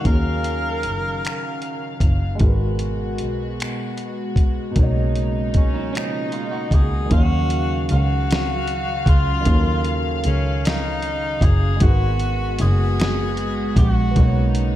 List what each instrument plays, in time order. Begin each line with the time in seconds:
Already playing: string section C#3 F#3 F5
0.00 grand piano D#3 C#4
0.05 double bass D#2, tenor saxophone A#4, kick, closed hi-hat
0.11 grand piano G#4
0.44 closed hi-hat
0.83 double bass F#1, closed hi-hat
1.25 finger snap, closed hi-hat
1.62 closed hi-hat
2.00 double bass F#1, kick, closed hi-hat
2.35 grand piano G#3
2.39 double bass G#1, string section B2 G#3 F#4, grand piano F#4 A#4, kick, closed hi-hat
2.47 grand piano B4
2.79 closed hi-hat
3.18 double bass B1, closed hi-hat
3.60 finger snap, closed hi-hat
3.98 closed hi-hat
4.36 kick, closed hi-hat
4.71 grand piano B2 A#3
4.76 double bass B1, string section C#3 D#4, grand piano C#5, kick, closed hi-hat
4.83 grand piano D#5
5.16 closed hi-hat
5.54 double bass C#2, tenor saxophone C#4, kick, closed hi-hat
5.74 clean electric guitar F#3 D#4
5.93 clean electric guitar F3 C#4, tenor saxophone D#4, closed hi-hat
5.97 finger snap
6.32 clean electric guitar G#3 F4, closed hi-hat
6.51 clean electric guitar A#3 F#4
6.71 double bass C#2, tenor saxophone G#4, kick, closed hi-hat
7.06 grand piano D#3
7.10 double bass D#2, string section C#3 F#3 F5, grand piano C#4, tenor saxophone F#4, kick, closed hi-hat
7.14 grand piano F#3 D#5
7.24 grand piano F5
7.50 closed hi-hat
7.89 double bass C#2, tenor saxophone F#4, closed hi-hat
8.31 snare, closed hi-hat
8.68 closed hi-hat
9.06 double bass C#2, tenor saxophone F4, kick, closed hi-hat
9.41 grand piano D#3
9.45 double bass D#2, grand piano C#4, kick, closed hi-hat
9.49 grand piano F#3 A4
9.59 grand piano A#4
9.85 closed hi-hat
10.24 double bass C#2, tenor saxophone C#4, closed hi-hat
10.65 tenor saxophone D#4, snare, closed hi-hat
11.02 closed hi-hat
11.41 double bass F#1, tenor saxophone G#4, kick, closed hi-hat
11.76 grand piano G#3 F#4
11.80 double bass G#1, string section G#3 B3 F#4, tenor saxophone F#4, grand piano A#4, kick, closed hi-hat
11.88 grand piano B4
12.20 closed hi-hat
12.59 double bass F#1, tenor saxophone G#4, closed hi-hat
13.00 snare, closed hi-hat
13.37 closed hi-hat
13.76 double bass A#1, tenor saxophone F#4, kick, closed hi-hat
14.11 grand piano A#3 B3
14.16 double bass B1, string section C#3 D#4, grand piano D#4, kick, closed hi-hat
14.23 grand piano C#5
14.55 closed hi-hat